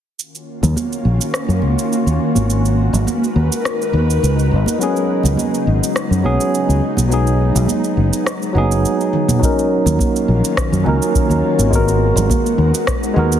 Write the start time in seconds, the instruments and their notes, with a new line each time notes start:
0.17 ambient pad D#3 A#3 C#4 F4 F#4, shaker
0.35 shaker
0.63 fingered electric bass D#2, low conga, shaker
0.76 high conga, shaker
0.92 shaker
1.05 fingered electric bass A#1
1.21 shaker
1.34 cross-stick, shaker
1.48 fingered electric bass F#2, shaker
1.62 fingered electric bass C#2, high conga
1.79 shaker
1.93 shaker
2.06 fingered electric bass D#2, shaker
2.35 fingered electric bass G#1, high conga, shaker
2.50 ambient pad G#3 D#4 A#4 B4, shaker
2.65 shaker
2.93 fingered electric bass G#1, low conga, shaker
3.07 high conga, shaker
3.24 shaker
3.36 fingered electric bass D#2
3.52 shaker
3.65 cross-stick, shaker
3.82 shaker
3.93 fingered electric bass D#2, high conga
4.10 shaker
4.23 fingered electric bass C#2, shaker
4.39 shaker
4.51 fingered electric bass G#1
4.66 high conga, shaker
4.78 ambient pad C#3 B3, tine electric piano F#3 B3 C#4, shaker
4.83 tine electric piano G#4
4.96 shaker
5.23 fingered electric bass C#2, low conga, shaker
5.37 high conga, shaker
5.54 shaker
5.67 fingered electric bass G#1
5.84 shaker
5.96 cross-stick, shaker
6.11 fingered electric bass F#2, shaker
6.23 fingered electric bass B1, tine electric piano F#3 B3 C#4 G#4, high conga
6.41 shaker
6.55 shaker
6.69 fingered electric bass C#2, shaker
6.97 fingered electric bass B1, high conga, shaker
7.08 tine electric piano F#3 B3 D#4, shaker
7.13 tine electric piano G#4
7.27 shaker
7.55 fingered electric bass B1, low conga, shaker
7.68 high conga, shaker
7.84 shaker
7.97 fingered electric bass F#1
8.13 shaker
8.27 cross-stick, shaker
8.42 shaker
8.53 fingered electric bass F#1, tine electric piano F#3 B3 D#4, high conga
8.58 tine electric piano G#4
8.72 shaker
8.85 shaker
9.01 shaker
9.13 high tom
9.28 mid tom, high conga, shaker
9.40 ambient pad D#3 A#3 C#4 F4 F#4, tine electric piano F#3 C#4 D#4, kick, shaker
9.45 tine electric piano A#4
9.59 shaker
9.86 fingered electric bass D#2, low conga, shaker
9.99 kick, high conga, shaker
10.16 shaker
10.28 fingered electric bass A#1
10.45 shaker
10.57 kick, cross-stick, shaker
10.72 fingered electric bass F#2, shaker
10.84 fingered electric bass C#2, tine electric piano F#3 C#4 D#4, high conga
10.89 tine electric piano A#4
11.02 shaker
11.15 kick, shaker
11.30 fingered electric bass D#2, shaker
11.59 fingered electric bass G#1, high conga, shaker
11.70 tine electric piano G#3 B3 F#4, ambient pad G#3 B3 D#4 A#4, kick, shaker
11.75 tine electric piano A#4
11.88 shaker
12.16 fingered electric bass G#1, low conga, shaker
12.30 kick, high conga, shaker
12.46 shaker
12.58 fingered electric bass D#2
12.74 shaker
12.87 kick, cross-stick, shaker
13.03 shaker
13.14 fingered electric bass D#2, tine electric piano G#3 B3 F#4
13.18 tine electric piano A#4, high conga
13.32 shaker